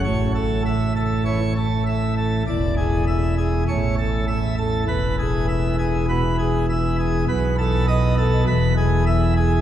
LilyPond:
<<
  \new Staff \with { instrumentName = "Pipe organ" } { \time 4/4 \key a \major \tempo 4 = 100 cis''8 a'8 e''8 a'8 cis''8 a'8 e''8 a'8 | d''8 gis'8 e''8 gis'8 cis''8 a'8 e''8 a'8 | b'8 gis'8 e''8 gis'8 b'8 gis'8 e''8 gis'8 | b'8 a'8 dis''8 a'8 b'8 gis'8 e''8 gis'8 | }
  \new Staff \with { instrumentName = "Pipe organ" } { \clef bass \time 4/4 \key a \major << { a,2 e16 r4. r16 | e,2 a,2 | e,2 b,16 r4. r16 | b,2 e,2 | } \\ { a,,1 | e,,2 a,,2 | e,,1 | b,,2 e,,2 | } >> }
>>